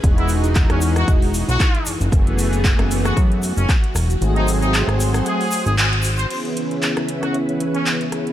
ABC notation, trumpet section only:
X:1
M:4/4
L:1/16
Q:"Swing 16ths" 1/4=115
K:C#m
V:1 name="Trumpet section"
z E z3 C C F z3 F3 z2 | z6 z F z3 C z4 | z D z D z4 G3 G G z2 ^B | ^B z6 F z3 C z4 |]